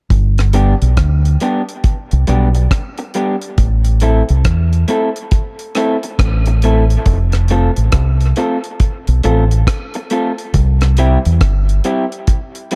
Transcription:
0.10 0.73 G1 loud
0.10 kick loud
0.10 closed hi-hat medium
0.38 cross-stick medium
0.38 closed hi-hat soft
0.53 0.73 G3 medium
0.53 0.74 B3 medium
0.53 0.74 D4 medium
0.53 0.74 G4 medium
0.53 closed hi-hat medium
0.82 0.96 B1 medium
0.82 closed hi-hat medium
0.97 1.36 D2 medium
0.97 kick loud
0.97 cross-stick medium
0.97 closed hi-hat medium
1.25 closed hi-hat soft
1.40 1.61 G3 medium
1.40 1.61 B3 medium
1.40 1.61 D4 medium
1.40 1.61 G4 medium
1.40 closed hi-hat medium
1.69 closed hi-hat soft
1.84 kick loud
1.84 closed hi-hat medium
2.11 2.27 C2 medium
2.11 closed hi-hat soft
2.27 2.67 B1 medium
2.27 2.47 G3 medium
2.27 2.47 B3 medium
2.27 2.48 D4 medium
2.27 2.48 G4 medium
2.27 closed hi-hat medium
2.55 muted clean electric guitar stroke soft
2.55 closed hi-hat medium
2.71 kick loud
2.71 cross-stick loud
2.71 closed hi-hat medium
2.98 muted clean electric guitar stroke soft
2.98 closed hi-hat soft
3.14 3.34 G3 medium
3.14 3.35 B3 medium
3.14 3.35 D4 medium
3.14 3.35 G4 medium
3.14 closed hi-hat medium
3.42 closed hi-hat medium
3.58 4.21 A1 loud
3.58 kick loud
3.58 closed hi-hat medium
3.85 closed hi-hat medium
4.00 4.21 A3 medium
4.00 4.22 C4 medium
4.00 4.22 E4 medium
4.00 4.22 A4 medium
4.00 closed hi-hat medium
4.29 4.44 C2 medium
4.29 closed hi-hat soft
4.45 4.84 E2 medium
4.45 kick loud
4.45 cross-stick loud
4.45 closed hi-hat medium
4.73 closed hi-hat soft
4.88 5.08 A3 medium
4.88 5.08 C4 medium
4.88 5.09 E4 medium
4.88 5.09 A4 loud
4.88 closed hi-hat medium
5.16 closed hi-hat soft
5.31 kick loud
5.31 closed hi-hat medium
5.59 closed hi-hat soft
5.75 5.95 A3 medium
5.75 5.96 C4 medium
5.75 5.96 E4 loud
5.75 5.96 A4 medium
5.75 cross-stick medium
5.75 closed hi-hat medium
6.03 muted clean electric guitar stroke soft
6.03 closed hi-hat medium
6.19 6.96 A1 loud
6.19 kick loud
6.19 cross-stick loud
6.19 closed hi-hat medium
6.46 muted clean electric guitar stroke soft
6.46 closed hi-hat medium
6.62 6.83 A3 medium
6.62 6.83 C4 medium
6.62 6.83 E4 medium
6.62 6.83 A4 medium
6.62 closed hi-hat medium
6.90 closed hi-hat soft
7.06 7.69 F1 loud
7.06 kick loud
7.06 closed hi-hat medium
7.32 cross-stick medium
7.32 closed hi-hat soft
7.48 7.70 A3 medium
7.48 7.70 C4 medium
7.48 7.70 F4 medium
7.48 7.70 A4 medium
7.48 closed hi-hat medium
7.76 7.92 A1 medium
7.76 closed hi-hat medium
7.92 8.32 C2 medium
7.92 kick loud
7.92 cross-stick loud
7.92 closed hi-hat loud
8.21 closed hi-hat soft
8.36 8.56 A3 medium
8.36 8.56 C4 medium
8.36 8.57 F4 medium
8.36 8.57 A4 medium
8.36 closed hi-hat medium
8.64 closed hi-hat soft
8.80 kick loud
8.80 closed hi-hat medium
9.07 9.22 B1 medium
9.07 closed hi-hat soft
9.23 9.63 A1 medium
9.23 9.43 A3 medium
9.23 9.43 C4 medium
9.23 9.44 F4 medium
9.23 9.44 A4 medium
9.23 closed hi-hat medium
9.51 closed hi-hat medium
9.67 kick loud
9.67 cross-stick loud
9.67 closed hi-hat loud
9.94 muted clean electric guitar stroke soft
9.94 closed hi-hat medium
10.10 10.30 A3 medium
10.10 10.31 C4 medium
10.10 10.31 F4 medium
10.10 10.31 A4 loud
10.10 closed hi-hat medium
10.38 closed hi-hat soft
10.54 11.17 C2 loud
10.54 kick medium
10.54 closed hi-hat medium
10.81 cross-stick medium
10.81 closed hi-hat soft
10.97 11.17 G3 medium
10.97 11.18 C4 medium
10.97 11.18 E4 loud
10.97 11.18 G4 medium
10.97 closed hi-hat medium
11.25 11.40 E2 medium
11.25 closed hi-hat medium
11.41 11.80 G1 medium
11.41 kick loud
11.41 cross-stick loud
11.41 closed hi-hat medium
11.69 closed hi-hat soft
11.84 12.04 G3 medium
11.84 12.04 C4 medium
11.84 12.05 E4 medium
11.84 12.05 G4 medium
11.84 closed hi-hat medium
12.12 closed hi-hat soft
12.27 kick loud
12.27 closed hi-hat medium
12.55 closed hi-hat soft
12.71 12.75 G3 medium
12.71 closed hi-hat medium

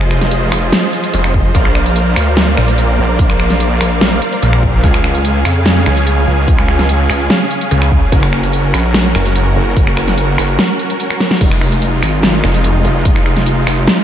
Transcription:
0.00 0.50 F1 loud
0.00 1.51 F3 medium
0.00 1.51 F4 medium
0.00 1.51 G#4 medium
0.00 4.79 C5 medium
0.00 1.51 D#5 medium
0.00 finger snap medium
0.11 finger snap soft
0.21 snare soft
0.21 closed hi-hat medium
0.31 closed hi-hat medium
0.52 0.71 F1 medium
0.52 finger snap medium
0.52 open hi-hat loud
0.73 snare loud
0.73 closed hi-hat medium
0.93 closed hi-hat medium
1.04 closed hi-hat medium
1.14 1.43 F1 loud
1.14 closed hi-hat medium
1.24 finger snap medium
1.34 kick medium
1.55 2.15 A#1 loud
1.55 4.80 A#3 medium
1.55 4.80 A#4 medium
1.55 4.80 D5 medium
1.55 8.08 F5 medium
1.55 kick loud
1.55 closed hi-hat medium
1.65 finger snap medium
1.75 finger snap soft
1.86 closed hi-hat medium
1.96 closed hi-hat medium
2.16 2.56 D2 loud
2.16 finger snap medium
2.16 open hi-hat medium
2.37 snare loud
2.37 closed hi-hat medium
2.57 2.97 A#1 loud
2.57 finger snap medium
2.57 closed hi-hat medium
2.68 closed hi-hat medium
2.78 closed hi-hat medium
2.99 3.18 A#1 loud
3.19 3.79 A#1 loud
3.19 kick loud
3.19 closed hi-hat medium
3.30 finger snap medium
3.40 finger snap soft
3.50 snare soft
3.50 closed hi-hat medium
3.60 closed hi-hat medium
3.81 4.00 A#1 loud
3.81 finger snap medium
3.81 open hi-hat medium
4.01 4.20 A#1 loud
4.01 snare loud
4.01 closed hi-hat medium
4.22 closed hi-hat medium
4.33 closed hi-hat medium
4.42 4.82 A#1 loud
4.42 closed hi-hat medium
4.53 finger snap medium
4.63 kick medium
4.84 5.44 C#2 loud
4.84 8.09 C#3 medium
4.84 11.37 C#4 medium
4.84 8.09 G#4 medium
4.84 8.09 G#5 medium
4.84 kick loud
4.84 closed hi-hat medium
4.94 finger snap medium
5.04 finger snap medium
5.15 closed hi-hat soft
5.25 closed hi-hat medium
5.45 5.85 F2 loud
5.45 finger snap medium
5.45 open hi-hat medium
5.66 snare loud
5.66 closed hi-hat medium
5.86 6.26 C#2 loud
5.86 finger snap medium
5.86 closed hi-hat medium
5.97 closed hi-hat medium
6.07 closed hi-hat medium
6.27 6.46 C#2 loud
6.48 7.08 C#2 loud
6.48 kick loud
6.48 closed hi-hat medium
6.59 finger snap medium
6.68 finger snap medium
6.79 snare soft
6.79 closed hi-hat soft
6.89 closed hi-hat medium
7.10 7.29 C#2 loud
7.10 finger snap medium
7.10 open hi-hat medium
7.30 snare loud
7.30 closed hi-hat medium
7.51 closed hi-hat medium
7.61 closed hi-hat medium
7.71 8.01 C#2 loud
7.71 closed hi-hat medium
7.82 finger snap medium
7.92 kick medium
8.12 8.72 F#1 loud
8.12 11.38 F#4 medium
8.12 11.38 A#4 medium
8.12 kick loud
8.12 closed hi-hat medium
8.23 finger snap medium
8.33 finger snap medium
8.43 closed hi-hat medium
8.53 closed hi-hat medium
8.74 9.13 A#1 loud
8.74 finger snap medium
8.74 open hi-hat loud
8.94 snare loud
8.94 closed hi-hat medium
9.15 9.55 F#1 loud
9.15 finger snap medium
9.15 closed hi-hat medium
9.26 closed hi-hat medium
9.36 closed hi-hat medium
9.56 9.75 F#1 loud
9.77 10.37 F#1 loud
9.77 kick loud
9.77 closed hi-hat medium
9.87 finger snap medium
9.97 finger snap medium
10.08 snare soft
10.08 closed hi-hat medium
10.18 closed hi-hat medium
10.38 10.57 F#1 loud
10.38 finger snap medium
10.38 open hi-hat loud
10.59 snare loud
10.59 closed hi-hat medium
10.79 closed hi-hat medium
10.90 closed hi-hat medium
11.00 closed hi-hat medium
11.11 finger snap medium
11.20 snare medium
11.31 snare medium
11.41 12.01 F1 loud
11.41 14.04 G#3 medium
11.41 14.04 D#4 medium
11.41 14.04 F4 medium
11.41 kick loud
11.41 closed hi-hat medium
11.41 crash loud
11.52 finger snap medium
11.61 finger snap medium
11.61 closed hi-hat medium
11.72 closed hi-hat medium
11.82 closed hi-hat medium
12.03 12.42 G#1 loud
12.03 finger snap medium
12.03 open hi-hat loud
12.23 snare loud
12.23 closed hi-hat medium
12.44 12.83 F1 loud
12.44 finger snap medium
12.54 closed hi-hat medium
12.64 closed hi-hat medium
12.85 13.04 F1 loud
12.85 closed hi-hat medium
13.05 13.65 F1 loud
13.05 kick loud
13.05 closed hi-hat medium
13.16 finger snap medium
13.26 finger snap soft
13.26 closed hi-hat medium
13.37 snare soft
13.37 closed hi-hat medium
13.46 closed hi-hat medium
13.67 13.86 F1 medium
13.67 finger snap medium
13.67 open hi-hat medium
13.88 snare loud
13.88 closed hi-hat medium

